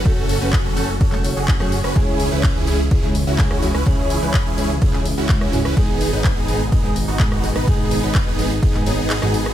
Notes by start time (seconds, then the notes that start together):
Already playing: C#3 F#3 A3 F#4
0.05 F#1 A3 C#4 F#4 A4, kick, ride
0.29 open hi-hat
0.41 F#1 A3 C#4 F#4 B4 C#5
0.53 kick, clap, ride
0.65 F#1 C#4 F#4 A4
0.76 A3 C#4 F#4 A4, open hi-hat
1.01 F#1 C#4 F#4 A4, kick, ride
1.12 A3 C#4 F#4 A4, clap
1.24 A3 C#4 F#4 C#5, open hi-hat
1.36 F#1 C#4 F#4 G#4
1.48 kick, clap, ride
1.60 F#2 A3 C#4 F#4 G#4, cross-stick
1.72 open hi-hat
1.84 F#1 C#4 F#4 B4, cross-stick
1.95 C#2 C#3 E3 G#3 C#4 E4 G#4, kick, ride
2.20 open hi-hat
2.31 C#2 C#3 G#3 C#4 E4 B4 C#5
2.43 kick, clap, ride
2.56 C#2 C#4 E4 G#4
2.67 C#3 G#3 C#4 E4 G#4, open hi-hat
2.91 C#2 C#4 E4 G#4, kick, ride
3.03 C#3 G#3 C#4 E4 G#4
3.15 open hi-hat
3.27 C#2 C#4 E4 F#4
3.38 C#3 G#3 C#4 E4 G#4, kick, clap, ride
3.51 C#2 C#4 E4 F#4, cross-stick
3.62 C#3 G#3 C#4 E4 G#4, open hi-hat
3.75 C#2 C#4 E4 B4, cross-stick
3.86 C#2 C#3 G#3 C#4 E4 G#4, kick, ride
4.10 open hi-hat
4.21 C#2 C#3 G#3 C#4 E4 B4 C#5
4.34 kick, clap, ride
4.46 C#2 C#4 E4 G#4
4.57 C#3 G#3 C#4 E4 G#4, open hi-hat
4.82 C#2 C#4 E4 G#4, kick, ride
4.93 C#3 G#3 C#4 E4 G#4, clap
5.05 open hi-hat
5.18 C#2 C#4 E4 F#4
5.29 C#3 G#3 C#4 E4 G#4, kick, clap, ride
5.41 C#2 C#4 E4 F#4, cross-stick
5.52 G#2 G#3 C#4 E4 G#4, open hi-hat
5.65 C#2 C#4 E4 B4, cross-stick
5.76 G#1 G#2 B2 D#3 G#3 B3 D#4 G#4, kick, ride
6.01 open hi-hat
6.12 G#1 G#2 G#3 B3 D#4 B4 C#5
6.24 kick, clap, ride
6.36 G#1 B3 D#4 G#4
6.48 G#2 G#3 B3 D#4 G#4, open hi-hat
6.72 G#1 B3 D#4 G#4, kick, ride
6.83 G#2 G#3 B3 D#4 G#4
6.96 open hi-hat
7.08 G#1 B3 D#4 F#4
7.19 G#2 G#3 B3 D#4 G#4, kick, clap, ride
7.32 G#1 B3 D#4 F#4, cross-stick
7.43 G#2 G#3 B3 D#4 G#4, open hi-hat
7.55 G#1 B3 D#4 B4, cross-stick
7.67 G#1 G#2 G#3 B3 D#4 G#4, kick, ride
7.91 open hi-hat
8.02 G#1 G#2 G#3 B3 D#4 B4 C#5
8.15 kick, clap, ride
8.27 G#1 B3 D#4 G#4
8.38 G#2 G#3 B3 D#4 G#4, open hi-hat
8.62 G#1 B3 D#4 G#4, kick, ride
8.74 G#2 G#3 B3 D#4 G#4, clap
8.86 G#1 G#2 G#3 B3 D#4 G#4 C#5, open hi-hat
9.10 clap, ride
9.21 G#1 G#2 G#3 B3 D#4 F#4 G#4, cross-stick
9.34 open hi-hat
9.46 cross-stick